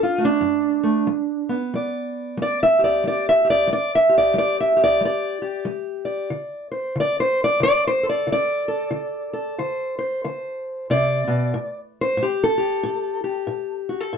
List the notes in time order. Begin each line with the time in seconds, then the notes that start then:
Already playing: F#2 D4
0.03 F4
0.18 A3
0.25 D4
0.41 F#2
0.83 A3
1.07 G3
1.49 B3
1.74 G3 D5
2.37 G3
2.42 D5
2.63 E5
2.79 G4
2.84 D5
3.04 G3 D5
3.29 E5
3.45 G4
3.50 D5
3.67 G3
3.73 D5
3.95 E5
4.09 G4
4.18 D5
4.34 G3
4.38 D5
4.60 E5
4.77 G4
4.84 D5
5.01 G3
5.05 D5
5.42 G4
5.65 G3
6.05 D5
6.30 D3
6.72 C5
6.96 D3
7.00 D5
7.20 C5
7.44 D5
7.60 D3 D5
7.87 C5
8.03 A4
8.09 D5
8.27 D3
8.32 D5
8.68 A4
8.91 D3
9.33 A4
9.58 D3 C5
9.99 C5
10.24 D3 C5
10.90 C3 D5
11.27 B2
11.54 A2
12.01 C5
12.17 A2
12.23 G4
12.44 A4
12.58 G4
12.83 A2
13.24 G4
13.47 A2
13.89 F#4
14.00 A4
14.13 A2